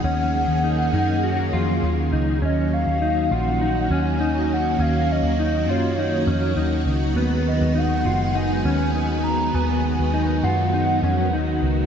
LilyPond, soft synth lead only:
\new Staff \with { instrumentName = "Soft synth lead" } { \time 4/4 \key ees \minor \tempo 4 = 101 ges''2. r4 | ees''8 f''4 ges''4 aes''4 ges''8 | f''8 ees''4 des''2 r8 | r8 dis''8 fis''4 gis''4. bes''8 |
gis''4. fis''2 r8 | }